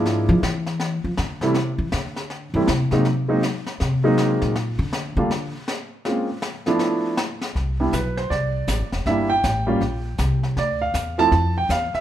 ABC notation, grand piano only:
X:1
M:4/4
L:1/8
Q:"Swing" 1/4=160
K:Bblyd
V:1 name="Grand piano"
z8 | z8 | z8 | z8 |
z8 | [K:C] z2 B c d3 z | e g6 z | d f2 a2 g f e |]
V:2 name="Grand piano"
[F,_A,B,DE]2 z4 z [E,G,=A,CE] | z4 z [E,G,A,CE] z [_G,_A,B,C_E] | z [_G,_A,B,C_E] z3 [G,A,B,CE]3 | z3 [G,A,B,DF] z4 |
[_A,B,C_DF] z2 [F,=A,=B,=DE]3 z2 | [K:C] z [G,B,DE] z6 | [G,_B,DE] z2 [G,B,_DF] z4 | z3 [F,A,CE] z4 |]